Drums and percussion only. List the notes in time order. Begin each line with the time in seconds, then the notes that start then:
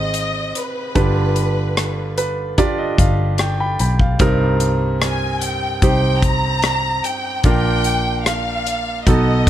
0.14 closed hi-hat
0.55 closed hi-hat
0.95 kick, closed hi-hat
1.36 closed hi-hat
1.77 cross-stick, closed hi-hat
2.18 closed hi-hat
2.58 kick, closed hi-hat
2.98 kick, closed hi-hat
3.38 cross-stick, closed hi-hat
3.79 closed hi-hat
3.99 kick
4.19 kick, closed hi-hat
4.60 closed hi-hat
5.01 cross-stick, closed hi-hat
5.41 closed hi-hat
5.82 kick, closed hi-hat
6.22 kick, closed hi-hat
6.62 cross-stick, closed hi-hat
7.04 closed hi-hat
7.44 kick, closed hi-hat
7.84 closed hi-hat
8.26 cross-stick, closed hi-hat
8.67 closed hi-hat
9.07 kick, closed hi-hat